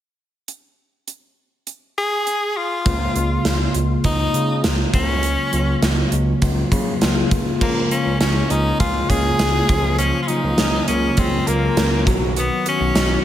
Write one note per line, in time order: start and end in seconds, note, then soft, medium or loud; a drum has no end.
0.48 closed hi-hat soft
1.08 closed hi-hat soft
1.67 closed hi-hat soft
1.98 2.58 G#4 loud
2.27 closed hi-hat medium
2.57 3.75 F4 medium
2.85 3.07 C#2 medium
2.85 3.06 C#3 medium
2.85 3.06 G#3 medium
2.85 3.06 A#3 medium
2.85 3.06 F4 loud
2.85 kick loud
2.85 closed hi-hat medium
3.14 3.37 C#2 medium
3.14 3.35 C#3 loud
3.14 3.35 G#3 medium
3.14 3.36 A#3 medium
3.14 3.36 F4 loud
3.14 closed hi-hat medium
3.45 3.67 C#2 medium
3.45 3.65 C#3 medium
3.45 3.65 G#3 medium
3.45 3.65 A#3 medium
3.45 3.66 F4 medium
3.45 snare medium
3.45 closed hi-hat medium
3.74 3.96 C#2 medium
3.74 3.94 C#3 medium
3.74 3.95 G#3 medium
3.74 3.95 A#3 medium
3.74 3.95 F4 medium
3.74 closed hi-hat medium
4.04 4.26 C#2 loud
4.04 4.24 C#3 medium
4.04 4.25 G#3 medium
4.04 4.25 A#3 medium
4.04 4.60 D#4 loud
4.04 4.25 F4 medium
4.04 kick medium
4.04 closed hi-hat medium
4.33 4.54 C#3 medium
4.33 4.65 C#3 medium
4.33 4.54 G#3 medium
4.33 4.54 A#3 medium
4.33 4.54 F4 medium
4.33 closed hi-hat medium
4.63 4.85 C#2 loud
4.63 4.84 C#3 medium
4.63 4.84 G#3 medium
4.63 4.84 A#3 medium
4.63 4.84 F4 medium
4.63 snare loud
4.63 closed hi-hat medium
4.92 5.36 C#2 medium
4.92 5.41 C#3 medium
4.92 5.41 F#3 medium
4.92 5.41 A#3 medium
4.92 5.79 C#4 loud
4.92 5.41 F4 medium
4.92 kick medium
4.92 closed hi-hat medium
5.23 closed hi-hat medium
5.52 5.75 C#2 medium
5.52 5.72 C#3 medium
5.52 5.73 F#3 medium
5.52 5.73 A#3 medium
5.52 5.73 F4 medium
5.52 closed hi-hat medium
5.81 6.04 C#2 medium
5.81 6.02 C#3 medium
5.81 6.02 F#3 medium
5.81 6.02 A#3 medium
5.81 6.03 F4 medium
5.81 snare medium
5.81 closed hi-hat medium
6.11 6.34 C#2 medium
6.11 6.32 C#3 medium
6.11 6.32 F#3 medium
6.11 6.32 A#3 medium
6.11 6.32 F4 medium
6.11 closed hi-hat medium
6.41 6.64 C#2 loud
6.41 6.62 C#3 medium
6.41 6.62 F#3 medium
6.41 6.62 A#3 medium
6.41 6.62 F4 medium
6.41 kick medium
6.41 closed hi-hat medium
6.70 6.91 C#3 medium
6.70 6.93 C#3 medium
6.70 6.91 F#3 medium
6.70 6.92 A#3 medium
6.70 6.92 F4 medium
6.70 kick medium
6.70 closed hi-hat medium
7.01 7.23 C#2 loud
7.01 7.21 C#3 loud
7.01 7.22 F#3 medium
7.01 7.22 A#3 medium
7.01 7.22 F4 loud
7.01 snare loud
7.01 closed hi-hat medium
7.30 7.53 C#2 medium
7.30 7.55 C#3 medium
7.30 7.55 G#3 medium
7.30 7.55 A#3 medium
7.30 kick loud
7.30 closed hi-hat medium
7.60 7.83 C#2 loud
7.60 7.81 C#3 medium
7.60 9.69 F3 medium
7.60 7.81 G#3 medium
7.60 7.81 A#3 medium
7.60 7.89 A#3 medium
7.60 7.81 F4 loud
7.60 kick loud
7.60 crash medium
7.90 8.10 C#3 medium
7.90 8.10 G#3 medium
7.90 8.11 A#3 medium
7.90 10.88 A#3 soft
7.90 8.19 C#4 medium
7.90 8.11 F4 medium
7.90 closed hi-hat medium
8.06 8.16 C#2 medium
8.19 8.42 C#2 medium
8.19 8.40 C#3 medium
8.19 8.40 G#3 medium
8.19 8.40 A#3 medium
8.19 8.52 C#4 medium
8.19 8.40 F4 medium
8.19 8.79 G#4 medium
8.19 snare loud
8.19 closed hi-hat medium
8.49 8.72 C#2 loud
8.49 8.70 C#3 medium
8.49 8.70 G#3 medium
8.49 8.70 A#3 medium
8.49 9.09 C#4 medium
8.49 8.79 D#4 medium
8.49 8.70 F4 medium
8.49 closed hi-hat medium
8.79 9.01 C#2 medium
8.79 9.00 C#3 medium
8.79 9.00 G#3 medium
8.79 9.00 A#3 medium
8.79 9.11 F4 medium
8.79 9.38 G#4 medium
8.79 kick medium
8.79 closed hi-hat medium
9.09 9.31 C#2 loud
9.09 9.29 C#3 medium
9.09 9.29 G#3 medium
9.09 9.30 A#3 medium
9.09 10.59 C#4 medium
9.09 9.30 F4 medium
9.09 9.98 G#4 loud
9.09 kick medium
9.09 closed hi-hat medium
9.38 9.61 C#2 loud
9.38 9.59 C#3 medium
9.38 9.59 G#3 medium
9.38 9.59 A#3 medium
9.38 9.59 F4 medium
9.38 9.75 G#4 medium
9.38 snare loud
9.38 closed hi-hat medium
9.68 10.12 C#2 medium
9.68 10.16 C#3 medium
9.68 9.98 F3 medium
9.68 10.16 F#3 medium
9.68 10.17 A#3 medium
9.68 10.17 F4 medium
9.68 kick loud
9.68 closed hi-hat medium
9.98 10.28 F3 medium
9.98 10.20 C#4 medium
9.98 closed hi-hat medium
10.23 10.29 F4 medium
10.28 10.48 C#3 medium
10.28 12.07 F3 medium
10.28 10.49 F#3 medium
10.28 10.49 A#3 medium
10.28 10.87 D#4 medium
10.28 10.49 F4 medium
10.28 closed hi-hat medium
10.44 10.54 C#2 loud
10.58 10.80 C#2 medium
10.58 10.78 C#3 medium
10.58 10.78 F#3 medium
10.58 10.78 A#3 medium
10.58 11.17 C#4 medium
10.58 snare medium
10.58 closed hi-hat medium
10.87 11.10 C#2 medium
10.87 11.07 C#3 medium
10.87 11.08 F#3 medium
10.87 11.08 A#3 medium
10.87 11.47 A#3 medium
10.87 11.20 C#4 medium
10.87 11.08 F4 medium
10.87 closed hi-hat medium
11.17 11.39 C#2 loud
11.17 11.37 C#3 medium
11.17 11.37 F#3 medium
11.17 11.38 A#3 medium
11.17 11.49 C4 medium
11.17 11.76 C#4 medium
11.17 11.38 F4 medium
11.17 kick medium
11.17 closed hi-hat medium
11.46 11.69 C#2 medium
11.46 11.67 C#3 medium
11.46 11.67 F#3 medium
11.46 11.67 A#3 medium
11.46 12.07 A#3 medium
11.46 12.13 A#3 medium
11.46 11.67 F4 medium
11.46 closed hi-hat medium
11.76 12.08 C#2 loud
11.76 11.96 C#3 medium
11.76 11.97 F#3 medium
11.76 11.97 A#3 medium
11.76 12.13 C#4 medium
11.76 11.97 F4 loud
11.76 snare loud
11.76 closed hi-hat medium
12.05 12.49 B1 medium
12.05 12.54 D#3 medium
12.05 12.54 F#3 medium
12.05 12.36 F#3 medium
12.05 12.54 B3 medium
12.05 12.54 F#4 medium
12.05 kick loud
12.05 closed hi-hat medium
12.37 12.65 F#3 medium
12.37 12.65 B3 medium
12.37 closed hi-hat medium
12.66 12.86 D#3 medium
12.66 12.86 F#3 medium
12.66 13.25 F#3 medium
12.66 12.87 B3 medium
12.66 13.23 C#4 medium
12.66 12.87 F#4 medium
12.66 closed hi-hat medium
12.80 12.91 B1 medium
12.95 13.17 B1 medium
12.95 13.16 D#3 medium
12.95 13.16 F#3 medium
12.95 13.16 B3 medium
12.95 13.25 D#4 medium
12.95 13.16 F#4 medium
12.95 snare medium
12.95 closed hi-hat medium